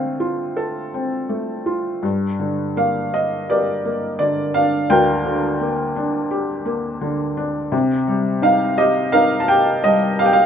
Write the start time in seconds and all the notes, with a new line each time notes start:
Already playing: D3 A3 C4 C5 F5
0.20 F4
0.57 A4
0.94 C4
1.29 A3
1.66 F4
2.03 G2
2.40 D3
2.77 A#3 F5
3.14 D#5
3.50 G4 A#4 D5
3.85 A#3
4.19 D3 D5
4.54 D4 F5
4.90 D2 A#4 G5
5.25 D3
5.61 A#3
5.96 D4
6.31 G4
6.66 A#3
7.01 D3
7.37 D4
7.72 C3
8.07 G3
8.42 D#4 F5
8.77 G4 D#5
9.12 D#4 A#4 F5
9.40 A5
9.48 G4 G5
9.84 G3 D#5
10.19 G4 F5
10.26 G5
10.33 F5